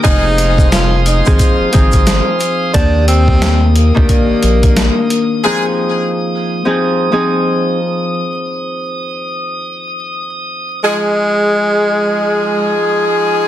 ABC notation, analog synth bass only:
X:1
M:4/4
L:1/16
Q:"Swing 16ths" 1/4=89
K:Fdor
V:1 name="Analog synth bass" clef=bass
F,,,6- F,,, A,,, z A,,, A,,,3 z3 | E,,6- E,, D,, z B,,, B,,,3 z3 | z16 | z16 |
z16 |]